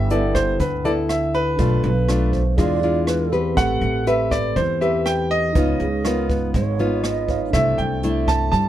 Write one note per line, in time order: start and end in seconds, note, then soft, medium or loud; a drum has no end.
0.00 0.56 G1 loud
0.00 0.57 G3 soft
0.00 1.54 E4 soft
0.00 1.55 A4 soft
0.00 1.56 B4 soft
0.00 0.12 E5 loud
0.00 1.57 G5 soft
0.10 0.60 B3 medium
0.10 0.60 E4 medium
0.10 0.60 A4 medium
0.10 0.36 D5 medium
0.10 closed hi-hat soft
0.35 0.60 C5 medium
0.35 kick soft
0.35 cross-stick medium
0.35 closed hi-hat soft
0.60 1.55 D2 medium
0.60 1.56 D3 soft
0.60 0.86 B4 medium
0.60 kick medium
0.60 closed hi-hat soft
0.85 1.55 B3 medium
0.85 1.55 E4 medium
0.85 1.55 A4 medium
0.85 0.90 D5 medium
0.85 closed hi-hat soft
1.09 1.35 E5 medium
1.09 cross-stick medium
1.09 closed hi-hat soft
1.34 2.29 B4 loud
1.34 closed hi-hat soft
1.56 1.82 B1 medium
1.56 2.55 B2 soft
1.56 1.91 A3 medium
1.56 2.55 D4 soft
1.56 1.91 D4 soft
1.56 1.91 F4 medium
1.56 2.56 A4 soft
1.56 2.56 B4 soft
1.56 kick medium
1.56 closed hi-hat soft
1.62 2.58 F5 soft
1.83 2.54 B1 loud
1.83 2.33 B4 medium
1.83 closed hi-hat soft
2.08 2.42 A3 medium
2.08 2.42 D4 medium
2.08 2.42 F4 medium
2.08 cross-stick medium
2.08 closed hi-hat soft
2.31 2.58 C5 medium
2.31 kick soft
2.31 closed hi-hat soft
2.57 3.53 E2 medium
2.57 3.55 E3 soft
2.57 2.79 G#3 medium
2.57 2.79 D4 medium
2.57 2.79 F4 medium
2.57 3.55 G#4 soft
2.57 3.07 D5 loud
2.57 3.56 D5 soft
2.57 kick medium
2.57 closed hi-hat soft
2.61 3.57 F5 medium
2.83 3.29 G#3 medium
2.83 3.29 D4 medium
2.83 3.29 F4 medium
2.83 closed hi-hat soft
3.07 3.42 B4 medium
3.07 cross-stick medium
3.07 closed hi-hat soft
3.32 4.02 C4 medium
3.32 4.03 G4 medium
3.32 4.03 B4 medium
3.32 closed hi-hat soft
3.55 3.80 A1 medium
3.55 4.54 A3 soft
3.55 5.50 C4 soft
3.55 5.51 A4 soft
3.55 4.03 F#5 medium
3.55 kick medium
3.55 cross-stick medium
3.55 closed hi-hat soft
3.59 5.53 G4 soft
3.59 5.52 B4 soft
3.81 4.52 A1 medium
3.81 closed hi-hat soft
4.07 4.56 C4 medium
4.07 4.56 G4 medium
4.07 4.56 B4 medium
4.07 4.32 E5 medium
4.07 closed hi-hat soft
4.31 4.57 D5 medium
4.31 kick medium
4.31 cross-stick medium
4.31 closed hi-hat soft
4.56 5.51 E2 medium
4.56 5.53 E3 medium
4.56 4.82 C5 medium
4.56 kick medium
4.56 closed hi-hat soft
4.81 5.51 C4 medium
4.81 5.51 G4 medium
4.81 5.52 B4 medium
4.81 5.07 E5 medium
4.81 closed hi-hat soft
5.06 5.31 G5 medium
5.06 cross-stick medium
5.06 closed hi-hat soft
5.31 6.26 D#5 loud
5.31 closed hi-hat soft
5.53 5.78 C#2 loud
5.53 6.52 C#3 medium
5.53 5.87 B3 medium
5.53 7.24 D#4 soft
5.53 5.87 D#4 medium
5.53 5.88 F4 medium
5.53 7.25 B4 soft
5.53 kick medium
5.53 closed hi-hat soft
5.57 7.26 C#5 soft
5.57 7.27 F5 soft
5.80 6.50 C#2 medium
5.80 6.06 G#4 medium
5.80 closed hi-hat soft
6.04 6.54 B3 medium
6.04 6.54 D#4 medium
6.04 6.54 F4 medium
6.04 6.31 A#4 medium
6.04 cross-stick medium
6.04 closed hi-hat soft
6.29 6.53 B4 medium
6.29 kick medium
6.29 closed hi-hat soft
6.54 7.50 G#1 medium
6.54 7.51 G#3 medium
6.54 7.06 C#5 medium
6.54 kick medium
6.54 closed hi-hat soft
6.79 7.50 B3 medium
6.79 7.50 D#4 medium
6.79 7.50 F4 medium
6.79 closed hi-hat soft
7.04 7.41 D#5 medium
7.04 cross-stick medium
7.04 closed hi-hat soft
7.28 7.53 D#4 soft
7.28 7.53 B4 soft
7.28 7.54 C#5 soft
7.28 7.54 F5 soft
7.28 kick soft
7.28 closed hi-hat soft
7.51 7.77 C2 medium
7.51 8.51 C3 medium
7.51 7.99 A3 medium
7.51 8.69 D4 soft
7.51 8.00 D4 medium
7.51 8.69 A4 soft
7.51 7.79 E5 loud
7.51 kick medium
7.51 cross-stick medium
7.51 closed hi-hat soft
7.55 8.00 E4 medium
7.55 8.69 C5 soft
7.55 8.69 E5 soft
7.78 8.49 C2 medium
7.78 8.29 G5 medium
7.78 closed hi-hat soft
8.03 8.53 A3 medium
8.03 8.53 D4 medium
8.03 8.53 E4 medium
8.03 closed hi-hat soft
8.28 8.50 A5 loud
8.28 kick medium
8.28 cross-stick medium
8.28 closed hi-hat soft
8.52 8.69 G2 medium
8.52 8.69 G3 medium
8.52 8.69 A5 loud
8.52 kick medium
8.52 closed hi-hat soft